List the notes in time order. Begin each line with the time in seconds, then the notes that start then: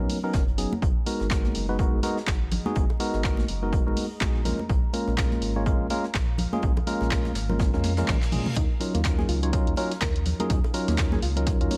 Already playing: B3 F#4 C#5
0.00 F#3 B3 C#4 D#4 A#4
0.09 open hi-hat, high conga
0.24 F#3 B3 C#4 D#4 A#4
0.33 F#1, kick, snare, closed hi-hat
0.48 closed hi-hat
0.58 F#3 B3 C#4 D#4 G#4, closed hi-hat, open hi-hat
0.73 high conga
0.82 G#1 G#4, kick, closed hi-hat
1.06 G#3 B3 D#4 F#4 A#4, closed hi-hat, open hi-hat
1.20 G#1, snare, high bongo
1.30 G#3 B3 D#4 F#4 A#4, kick, snare, clap, closed hi-hat
1.44 A#5, snare, high conga
1.55 F#1, closed hi-hat, open hi-hat
1.60 D#5
1.69 G#3 B3 D#4 F#4 B4
1.79 G#3 B3 D#4 F#4 A#4, kick, closed hi-hat
1.93 G#1
2.03 G#3 B3 D#4 F#4 A#4, closed hi-hat, open hi-hat, high conga
2.17 snare
2.27 G#1, kick, snare, clap, closed hi-hat
2.52 closed hi-hat, open hi-hat, low conga
2.66 G#3 B3 D#4 F#4 G#4, closed hi-hat, high conga
2.75 G#1, kick, closed hi-hat
2.90 closed hi-hat, high bongo
3.00 G#3 B3 D#4 F#4 A#4, closed hi-hat, open hi-hat
3.14 G#1, snare, high bongo
3.24 G#3 B3 D#4 F#4 A#4, kick, snare, clap, closed hi-hat
3.37 snare, high conga
3.48 F#1, closed hi-hat, open hi-hat
3.62 G#3 B3 D#4 F#4 A#4
3.73 kick, closed hi-hat
3.87 G#1 G#3 B3 D#4 F#4 A#4
3.96 open hi-hat, high conga
4.21 A#1 G#3 B3 D#4 F#4 G#4, kick, snare, clap, closed hi-hat
4.35 closed hi-hat
4.45 G#3 A#3 C#4 F4 A#4, closed hi-hat, open hi-hat, low conga
4.59 high conga
4.69 A#1, kick, closed hi-hat
4.93 G#3 A#3 C#4 F4 A#4, closed hi-hat, open hi-hat
5.04 A#1 F5, snare, high bongo
5.17 G#3 A#3 C#4 F4 A#4, kick, snare, clap, closed hi-hat
5.31 snare, high conga
5.42 G#1, closed hi-hat, open hi-hat
5.56 G#3 A#3 C#4 F4 C#5
5.66 G#3 A#3 C#4 F4 A#4, kick, closed hi-hat
5.80 A#1
5.90 G#3 A#3 C#4 F4 A#4, closed hi-hat, open hi-hat, high conga
6.04 snare
6.14 A#1, kick, snare, clap, closed hi-hat
6.38 closed hi-hat, open hi-hat, low conga
6.53 G#3 A#3 C#4 F4 G#4, closed hi-hat, high conga
6.62 A#1, kick, closed hi-hat
6.77 closed hi-hat, high bongo, low conga
6.87 G#3 A#3 C#4 F4 A#4, closed hi-hat, open hi-hat
7.01 A#1, snare, high bongo
7.11 G#3 A#3, kick, snare, clap, closed hi-hat
7.25 snare, high conga
7.35 G#1, snare, closed hi-hat, open hi-hat
7.49 G#3 A#3 C#4 F4 A#4, low conga
7.59 kick, snare, closed hi-hat, high tom, reverse cymbal
7.73 F2 G#3 A#3 C#4 F4 A#4, snare, high tom
7.84 snare, closed hi-hat, open hi-hat, high conga
7.97 G#3 A#3 C#4 F4 A#4, snare, closed hi-hat, mid tom
8.08 A#1, kick, snare, clap, closed hi-hat, mid tom
8.22 snare, clap, closed hi-hat
8.32 G#3 A#3 C#4 F4 G#4, closed hi-hat, mid tom, open hi-hat, low conga
8.46 mid tom, high conga
8.56 D#2 D#4, kick, closed hi-hat
8.80 F#3 C#4 D#4 F4 A#4, closed hi-hat, open hi-hat
8.94 D#2 A#3, snare, closed hi-hat, high bongo
9.05 F#3 C#4 D#4 F4 A#4, kick, snare, clap, closed hi-hat
9.19 G#4, snare, high conga
9.29 C#2 F4, closed hi-hat, open hi-hat
9.43 F#3 C#4 D#4 F4 C#5, closed hi-hat
9.53 F#3 C#4 D#4 F4 A#4, kick, closed hi-hat
9.67 D#2, closed hi-hat
9.76 F#3 C#4 D#4 F4 A#4, closed hi-hat, open hi-hat, high conga
9.92 snare, closed hi-hat
10.01 D#2 A#4, kick, snare, clap, closed hi-hat
10.16 closed hi-hat
10.26 closed hi-hat, open hi-hat, low conga
10.40 F#3 C#4 D#4 F4 G#4 A#4, closed hi-hat, high conga
10.50 D#2 D#4, kick, closed hi-hat
10.64 closed hi-hat, high bongo
10.74 F#3 C#4 D#4 F4 A#4, closed hi-hat, open hi-hat
10.88 D#2 A#3, snare, closed hi-hat, high bongo
10.98 F#3 F4 A#4, kick, snare, clap, closed hi-hat
11.12 G#4, snare, high conga
11.22 C#2 F4, closed hi-hat, open hi-hat
11.37 F#3 C#4 D#4 F4 A#4, closed hi-hat
11.46 kick, closed hi-hat
11.61 D#2 F#3 C#4 D#4 F4 A#4, closed hi-hat
11.70 C#4, open hi-hat, high conga